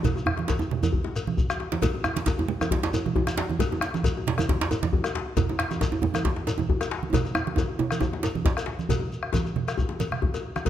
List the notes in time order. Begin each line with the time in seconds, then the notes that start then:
0.03 bombo low, cowbell, high conga, djembe tone, djembe bass, low conga, shekere
0.16 bombo rim, djembe slap, djembe tone, high conga, shekere
0.26 bombo rim, djembe bass
0.37 bombo rim, djembe slap, high conga
0.48 bombo low, cowbell, djembe slap, djembe bass, shekere
0.59 djembe tone, shekere
0.71 djembe slap, low conga
0.83 cowbell, high conga, djembe bass, shekere
0.92 bombo low, high conga, djembe bass
1.04 djembe slap, djembe tone
1.16 bombo rim, cowbell, shekere
1.27 bombo rim, high conga, low conga
1.37 bombo low, high conga, djembe bass, shekere
1.50 bombo rim, djembe bass, shekere
1.60 djembe slap
1.72 djembe slap, high conga
1.82 bombo low, cowbell, djembe tone, high conga, djembe bass, low conga, shekere
1.94 djembe tone, high conga
2.04 bombo rim, djembe tone, shekere
2.16 djembe slap, high conga, shekere
2.26 bombo low, cowbell, djembe slap, djembe bass, shekere
2.38 djembe tone
2.48 low conga
2.61 bombo rim, cowbell, djembe tone, high conga, shekere
2.71 bombo low, djembe slap, djembe bass
2.83 djembe slap, djembe tone, shekere
2.94 cowbell, djembe tone, shekere
3.06 bombo rim, high conga, low conga
3.16 bombo low, djembe tone, djembe bass
3.27 bombo rim, djembe slap, djembe tone, shekere
3.38 djembe slap
3.50 djembe tone, high conga
3.59 bombo low, cowbell, high conga, djembe bass, low conga, shekere
3.71 djembe tone, high conga
3.81 bombo rim, djembe slap, shekere
3.94 djembe slap, high conga, shekere
4.03 bombo low, cowbell, djembe slap, djembe bass, shekere
4.17 djembe tone
4.27 djembe slap, low conga
4.38 bombo rim, cowbell, high conga, djembe tone, shekere
4.49 bombo low, djembe slap, djembe bass
4.61 djembe slap, djembe tone, shekere
4.71 cowbell, djembe tone, shekere
4.83 bombo rim, djembe slap, high conga, low conga
4.93 bombo low, djembe bass
5.04 bombo rim, cowbell, djembe tone, shekere
5.15 djembe slap
5.37 bombo low, cowbell, high conga, low conga, djembe bass, shekere
5.49 high conga, djembe tone
5.59 bombo rim, djembe slap, shekere
5.71 djembe slap, high conga, shekere
5.81 bombo low, cowbell, djembe slap, djembe bass, shekere
5.92 djembe tone
6.02 djembe bass, low conga
6.14 bombo rim, cowbell, djembe tone, high conga, shekere
6.25 bombo low, djembe slap, djembe bass
6.36 djembe slap
6.47 cowbell, djembe slap, shekere
6.58 bombo rim, djembe tone, high conga, low conga
6.69 bombo low, djembe bass
6.81 bombo rim, cowbell, djembe tone, shekere
6.91 djembe slap
7.03 high conga
7.13 bombo low, cowbell, djembe slap, djembe tone, djembe bass, low conga, shekere
7.25 bombo rim, djembe tone, shekere
7.35 bombo rim, djembe tone, shekere
7.47 bombo rim, djembe slap, high conga
7.56 bombo low, cowbell, djembe tone, high conga, djembe bass, shekere
7.69 djembe tone
7.79 djembe slap, djembe tone, low conga
7.91 bombo rim, cowbell, high conga, shekere
8.01 bombo rim, bombo low, djembe tone, djembe bass, shekere
8.13 djembe slap, djembe tone
8.23 cowbell, djembe slap, shekere
8.35 djembe slap, high conga, low conga
8.45 bombo low, djembe slap, djembe bass, shekere
8.57 bombo rim, cowbell, shekere
8.66 bombo rim, djembe slap, high conga
8.79 high conga, shekere
8.89 bombo low, cowbell, djembe bass, low conga, shekere
9.00 djembe tone
9.12 high conga, shekere
9.23 bombo rim, high conga
9.33 bombo low, cowbell, djembe slap, high conga, djembe bass, shekere
9.45 djembe tone, shekere
9.56 bombo rim, low conga
9.68 bombo rim, cowbell, shekere
9.78 bombo low, high conga, djembe bass, shekere
9.89 djembe slap, djembe tone, high conga
10.00 cowbell, djembe slap, high conga, shekere
10.12 bombo rim, high conga, low conga
10.22 bombo low, high conga, djembe bass
10.34 cowbell, high conga, djembe tone, shekere
10.56 bombo rim, djembe slap, high conga, shekere
10.65 bombo low, cowbell, djembe bass, low conga, shekere